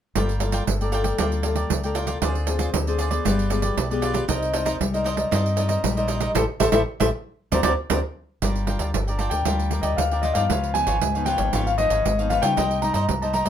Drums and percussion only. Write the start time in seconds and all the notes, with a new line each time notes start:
0.15 pandeiro
0.29 pandeiro
0.40 pandeiro
0.52 pandeiro
0.67 pandeiro
0.81 pandeiro
0.92 pandeiro
1.04 pandeiro
1.18 pandeiro
1.32 pandeiro
1.43 pandeiro
1.56 pandeiro
1.70 pandeiro
1.83 pandeiro
1.95 pandeiro
2.07 pandeiro
2.22 pandeiro
2.35 pandeiro
2.47 pandeiro
2.59 pandeiro
2.74 pandeiro
2.87 pandeiro
2.99 pandeiro
3.11 pandeiro
3.25 pandeiro
3.39 pandeiro
3.50 pandeiro
3.62 pandeiro
3.77 pandeiro
3.91 pandeiro
4.02 pandeiro
4.14 pandeiro
4.29 pandeiro
4.42 pandeiro
4.54 pandeiro
4.66 pandeiro
4.81 pandeiro
4.94 pandeiro
5.06 pandeiro
5.17 pandeiro
5.32 pandeiro
5.46 pandeiro
5.57 pandeiro
5.69 pandeiro
5.84 pandeiro
5.97 pandeiro
6.08 pandeiro
6.21 pandeiro
6.35 pandeiro
6.60 pandeiro
6.72 pandeiro
7.00 pandeiro
7.52 pandeiro
7.63 pandeiro
7.90 pandeiro
8.42 pandeiro
8.55 pandeiro
8.67 pandeiro
8.79 pandeiro
8.94 pandeiro
9.08 pandeiro
9.19 pandeiro
9.31 pandeiro
9.45 pandeiro
9.59 pandeiro
9.71 pandeiro
9.83 pandeiro
9.98 pandeiro
10.11 pandeiro
10.23 pandeiro
10.35 pandeiro
10.50 pandeiro
10.64 pandeiro
10.75 pandeiro
10.87 pandeiro
11.02 pandeiro
11.15 pandeiro
11.26 pandeiro
11.38 pandeiro
11.53 pandeiro
11.67 pandeiro
11.78 pandeiro
11.90 pandeiro
12.05 pandeiro
12.19 pandeiro
12.30 pandeiro
12.43 pandeiro
12.57 pandeiro
12.71 pandeiro
12.82 pandeiro
12.94 pandeiro
13.09 pandeiro
13.22 pandeiro
13.34 pandeiro
13.46 pandeiro